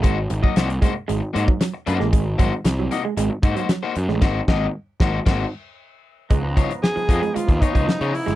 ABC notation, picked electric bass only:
X:1
M:4/4
L:1/16
Q:1/4=115
K:Db
V:1 name="Picked electric bass" clef=bass
A,,,2 A,,, z C,,2 z2 A,,, z A,, z3 G,, =A,,, | A,,,2 A,,, z C,,2 z2 A,,, z A,, z3 G,, =A,,, | A,,,2 A,,,2 z2 A,,,2 A,,,2 z6 | D,,3 z3 F,, z2 E,, z D,, z D, z =G,,, |]